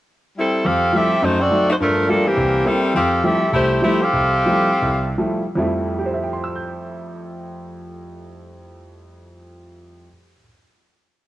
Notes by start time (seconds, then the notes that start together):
0.37 G3 C4 E4 A4
0.65 F2 C4 G4 A4 F5
0.93 F3 G3 A3 C4 E4 G4 A4 E5
1.22 F#2 A3 D#4 F#4 C5
1.40 C4 F#4 A4 D5
1.51 F#3 A3 D#4
1.70 A3 D#4 F#4 C5
1.80 G2 F3 A3 D4 A#4
2.08 F3 G3 A3 A#3 D4 F4 A4
2.27 E3 A#3 C4 G4
2.37 C2
2.65 G3 A#3 C4 E4 A4
2.95 F2 C4 G4 A4 F5
3.24 F3 G3 A3 C4 E4 G4 A4 E5
3.53 C2 A3 E4 G4 C5
3.82 F3 G3 A3 E4 G4 C5
4.02 C4 G4 A4 F5
4.13 C2
4.46 F3 G3 A3 E4
4.82 C2
5.18 F3 G3 A3 E4
5.55 F2 F3 G3 A3 E4
5.98 G4
6.06 C5
6.14 E5
6.23 G5
6.33 C6
6.44 E6
6.56 G6